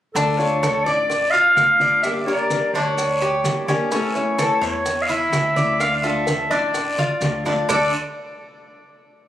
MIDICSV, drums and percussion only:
0, 0, Header, 1, 2, 480
1, 0, Start_track
1, 0, Key_signature, -1, "minor"
1, 0, Tempo, 471698
1, 160, Time_signature, 4, 2, 24, 8
1, 9445, End_track
2, 0, Start_track
2, 0, Title_t, "Drums"
2, 158, Note_on_c, 9, 60, 62
2, 158, Note_on_c, 9, 63, 33
2, 163, Note_on_c, 9, 74, 64
2, 166, Note_on_c, 9, 70, 69
2, 260, Note_off_c, 9, 60, 0
2, 260, Note_off_c, 9, 63, 0
2, 265, Note_off_c, 9, 74, 0
2, 267, Note_off_c, 9, 70, 0
2, 405, Note_on_c, 9, 63, 31
2, 405, Note_on_c, 9, 70, 27
2, 507, Note_off_c, 9, 63, 0
2, 507, Note_off_c, 9, 70, 0
2, 639, Note_on_c, 9, 60, 56
2, 642, Note_on_c, 9, 63, 90
2, 643, Note_on_c, 9, 73, 68
2, 647, Note_on_c, 9, 70, 61
2, 647, Note_on_c, 9, 75, 62
2, 740, Note_off_c, 9, 60, 0
2, 743, Note_off_c, 9, 63, 0
2, 745, Note_off_c, 9, 73, 0
2, 748, Note_off_c, 9, 70, 0
2, 749, Note_off_c, 9, 75, 0
2, 879, Note_on_c, 9, 73, 65
2, 884, Note_on_c, 9, 70, 25
2, 981, Note_off_c, 9, 73, 0
2, 986, Note_off_c, 9, 70, 0
2, 1116, Note_on_c, 9, 74, 64
2, 1118, Note_on_c, 9, 60, 63
2, 1124, Note_on_c, 9, 63, 31
2, 1129, Note_on_c, 9, 70, 61
2, 1218, Note_off_c, 9, 74, 0
2, 1219, Note_off_c, 9, 60, 0
2, 1226, Note_off_c, 9, 63, 0
2, 1231, Note_off_c, 9, 70, 0
2, 1356, Note_on_c, 9, 63, 31
2, 1364, Note_on_c, 9, 70, 28
2, 1457, Note_off_c, 9, 63, 0
2, 1466, Note_off_c, 9, 70, 0
2, 1588, Note_on_c, 9, 63, 80
2, 1595, Note_on_c, 9, 73, 65
2, 1597, Note_on_c, 9, 60, 62
2, 1597, Note_on_c, 9, 61, 76
2, 1599, Note_on_c, 9, 75, 63
2, 1601, Note_on_c, 9, 70, 61
2, 1690, Note_off_c, 9, 63, 0
2, 1697, Note_off_c, 9, 73, 0
2, 1699, Note_off_c, 9, 60, 0
2, 1699, Note_off_c, 9, 61, 0
2, 1701, Note_off_c, 9, 75, 0
2, 1703, Note_off_c, 9, 70, 0
2, 1828, Note_on_c, 9, 63, 79
2, 1839, Note_on_c, 9, 73, 66
2, 1842, Note_on_c, 9, 70, 27
2, 1930, Note_off_c, 9, 63, 0
2, 1941, Note_off_c, 9, 73, 0
2, 1944, Note_off_c, 9, 70, 0
2, 2071, Note_on_c, 9, 63, 30
2, 2072, Note_on_c, 9, 70, 69
2, 2077, Note_on_c, 9, 60, 67
2, 2082, Note_on_c, 9, 74, 61
2, 2085, Note_on_c, 9, 75, 61
2, 2173, Note_off_c, 9, 63, 0
2, 2173, Note_off_c, 9, 70, 0
2, 2178, Note_off_c, 9, 60, 0
2, 2184, Note_off_c, 9, 74, 0
2, 2187, Note_off_c, 9, 75, 0
2, 2309, Note_on_c, 9, 63, 33
2, 2321, Note_on_c, 9, 70, 26
2, 2410, Note_off_c, 9, 63, 0
2, 2422, Note_off_c, 9, 70, 0
2, 2547, Note_on_c, 9, 63, 84
2, 2550, Note_on_c, 9, 70, 66
2, 2551, Note_on_c, 9, 60, 57
2, 2558, Note_on_c, 9, 73, 68
2, 2649, Note_off_c, 9, 63, 0
2, 2651, Note_off_c, 9, 70, 0
2, 2653, Note_off_c, 9, 60, 0
2, 2659, Note_off_c, 9, 73, 0
2, 2795, Note_on_c, 9, 73, 67
2, 2798, Note_on_c, 9, 63, 31
2, 2799, Note_on_c, 9, 70, 25
2, 2897, Note_off_c, 9, 73, 0
2, 2900, Note_off_c, 9, 63, 0
2, 2901, Note_off_c, 9, 70, 0
2, 3027, Note_on_c, 9, 74, 64
2, 3034, Note_on_c, 9, 70, 65
2, 3034, Note_on_c, 9, 75, 59
2, 3035, Note_on_c, 9, 60, 65
2, 3035, Note_on_c, 9, 63, 32
2, 3128, Note_off_c, 9, 74, 0
2, 3136, Note_off_c, 9, 70, 0
2, 3136, Note_off_c, 9, 75, 0
2, 3137, Note_off_c, 9, 60, 0
2, 3137, Note_off_c, 9, 63, 0
2, 3268, Note_on_c, 9, 63, 31
2, 3270, Note_on_c, 9, 70, 25
2, 3274, Note_on_c, 9, 60, 34
2, 3370, Note_off_c, 9, 63, 0
2, 3372, Note_off_c, 9, 70, 0
2, 3376, Note_off_c, 9, 60, 0
2, 3502, Note_on_c, 9, 63, 78
2, 3508, Note_on_c, 9, 73, 65
2, 3510, Note_on_c, 9, 70, 64
2, 3511, Note_on_c, 9, 60, 62
2, 3511, Note_on_c, 9, 61, 76
2, 3604, Note_off_c, 9, 63, 0
2, 3610, Note_off_c, 9, 73, 0
2, 3612, Note_off_c, 9, 70, 0
2, 3613, Note_off_c, 9, 60, 0
2, 3613, Note_off_c, 9, 61, 0
2, 3747, Note_on_c, 9, 63, 84
2, 3747, Note_on_c, 9, 73, 67
2, 3749, Note_on_c, 9, 60, 33
2, 3749, Note_on_c, 9, 75, 64
2, 3754, Note_on_c, 9, 70, 28
2, 3849, Note_off_c, 9, 63, 0
2, 3849, Note_off_c, 9, 73, 0
2, 3851, Note_off_c, 9, 60, 0
2, 3851, Note_off_c, 9, 75, 0
2, 3856, Note_off_c, 9, 70, 0
2, 3985, Note_on_c, 9, 63, 34
2, 3985, Note_on_c, 9, 70, 70
2, 3987, Note_on_c, 9, 74, 62
2, 3989, Note_on_c, 9, 60, 65
2, 4086, Note_off_c, 9, 63, 0
2, 4087, Note_off_c, 9, 70, 0
2, 4089, Note_off_c, 9, 74, 0
2, 4091, Note_off_c, 9, 60, 0
2, 4222, Note_on_c, 9, 63, 31
2, 4227, Note_on_c, 9, 70, 26
2, 4324, Note_off_c, 9, 63, 0
2, 4329, Note_off_c, 9, 70, 0
2, 4463, Note_on_c, 9, 63, 90
2, 4465, Note_on_c, 9, 70, 63
2, 4467, Note_on_c, 9, 60, 60
2, 4468, Note_on_c, 9, 75, 63
2, 4471, Note_on_c, 9, 73, 70
2, 4565, Note_off_c, 9, 63, 0
2, 4566, Note_off_c, 9, 70, 0
2, 4569, Note_off_c, 9, 60, 0
2, 4570, Note_off_c, 9, 75, 0
2, 4572, Note_off_c, 9, 73, 0
2, 4707, Note_on_c, 9, 73, 63
2, 4711, Note_on_c, 9, 70, 28
2, 4809, Note_off_c, 9, 73, 0
2, 4813, Note_off_c, 9, 70, 0
2, 4942, Note_on_c, 9, 63, 32
2, 4943, Note_on_c, 9, 60, 69
2, 4944, Note_on_c, 9, 70, 64
2, 4956, Note_on_c, 9, 74, 65
2, 5043, Note_off_c, 9, 63, 0
2, 5045, Note_off_c, 9, 60, 0
2, 5045, Note_off_c, 9, 70, 0
2, 5058, Note_off_c, 9, 74, 0
2, 5178, Note_on_c, 9, 63, 34
2, 5183, Note_on_c, 9, 70, 26
2, 5280, Note_off_c, 9, 63, 0
2, 5285, Note_off_c, 9, 70, 0
2, 5417, Note_on_c, 9, 63, 81
2, 5419, Note_on_c, 9, 60, 61
2, 5419, Note_on_c, 9, 61, 78
2, 5422, Note_on_c, 9, 75, 61
2, 5425, Note_on_c, 9, 70, 65
2, 5428, Note_on_c, 9, 73, 69
2, 5519, Note_off_c, 9, 63, 0
2, 5521, Note_off_c, 9, 60, 0
2, 5521, Note_off_c, 9, 61, 0
2, 5524, Note_off_c, 9, 75, 0
2, 5527, Note_off_c, 9, 70, 0
2, 5530, Note_off_c, 9, 73, 0
2, 5662, Note_on_c, 9, 63, 84
2, 5669, Note_on_c, 9, 73, 66
2, 5672, Note_on_c, 9, 70, 27
2, 5764, Note_off_c, 9, 63, 0
2, 5770, Note_off_c, 9, 73, 0
2, 5774, Note_off_c, 9, 70, 0
2, 5905, Note_on_c, 9, 60, 65
2, 5906, Note_on_c, 9, 63, 30
2, 5906, Note_on_c, 9, 75, 62
2, 5907, Note_on_c, 9, 70, 66
2, 5908, Note_on_c, 9, 74, 66
2, 6007, Note_off_c, 9, 60, 0
2, 6008, Note_off_c, 9, 63, 0
2, 6008, Note_off_c, 9, 75, 0
2, 6009, Note_off_c, 9, 70, 0
2, 6009, Note_off_c, 9, 74, 0
2, 6144, Note_on_c, 9, 60, 33
2, 6144, Note_on_c, 9, 70, 27
2, 6151, Note_on_c, 9, 63, 33
2, 6245, Note_off_c, 9, 60, 0
2, 6246, Note_off_c, 9, 70, 0
2, 6253, Note_off_c, 9, 63, 0
2, 6378, Note_on_c, 9, 60, 56
2, 6384, Note_on_c, 9, 70, 59
2, 6392, Note_on_c, 9, 63, 85
2, 6392, Note_on_c, 9, 73, 71
2, 6479, Note_off_c, 9, 60, 0
2, 6486, Note_off_c, 9, 70, 0
2, 6493, Note_off_c, 9, 63, 0
2, 6494, Note_off_c, 9, 73, 0
2, 6626, Note_on_c, 9, 63, 33
2, 6631, Note_on_c, 9, 70, 26
2, 6631, Note_on_c, 9, 73, 65
2, 6728, Note_off_c, 9, 63, 0
2, 6732, Note_off_c, 9, 73, 0
2, 6733, Note_off_c, 9, 70, 0
2, 6862, Note_on_c, 9, 60, 69
2, 6864, Note_on_c, 9, 70, 63
2, 6866, Note_on_c, 9, 75, 59
2, 6871, Note_on_c, 9, 74, 64
2, 6872, Note_on_c, 9, 63, 34
2, 6964, Note_off_c, 9, 60, 0
2, 6965, Note_off_c, 9, 70, 0
2, 6968, Note_off_c, 9, 75, 0
2, 6973, Note_off_c, 9, 63, 0
2, 6973, Note_off_c, 9, 74, 0
2, 7103, Note_on_c, 9, 60, 32
2, 7105, Note_on_c, 9, 70, 27
2, 7107, Note_on_c, 9, 63, 81
2, 7205, Note_off_c, 9, 60, 0
2, 7207, Note_off_c, 9, 70, 0
2, 7209, Note_off_c, 9, 63, 0
2, 7339, Note_on_c, 9, 70, 63
2, 7345, Note_on_c, 9, 60, 63
2, 7345, Note_on_c, 9, 61, 77
2, 7345, Note_on_c, 9, 63, 93
2, 7350, Note_on_c, 9, 73, 68
2, 7441, Note_off_c, 9, 70, 0
2, 7447, Note_off_c, 9, 60, 0
2, 7447, Note_off_c, 9, 61, 0
2, 7447, Note_off_c, 9, 63, 0
2, 7452, Note_off_c, 9, 73, 0
2, 7586, Note_on_c, 9, 64, 77
2, 7586, Note_on_c, 9, 70, 28
2, 7589, Note_on_c, 9, 75, 61
2, 7592, Note_on_c, 9, 60, 33
2, 7596, Note_on_c, 9, 73, 62
2, 7688, Note_off_c, 9, 64, 0
2, 7688, Note_off_c, 9, 70, 0
2, 7691, Note_off_c, 9, 75, 0
2, 7693, Note_off_c, 9, 60, 0
2, 7698, Note_off_c, 9, 73, 0
2, 7827, Note_on_c, 9, 75, 93
2, 7830, Note_on_c, 9, 64, 93
2, 7830, Note_on_c, 9, 70, 92
2, 7832, Note_on_c, 9, 61, 91
2, 7833, Note_on_c, 9, 74, 91
2, 7928, Note_off_c, 9, 75, 0
2, 7932, Note_off_c, 9, 64, 0
2, 7932, Note_off_c, 9, 70, 0
2, 7934, Note_off_c, 9, 61, 0
2, 7935, Note_off_c, 9, 74, 0
2, 9445, End_track
0, 0, End_of_file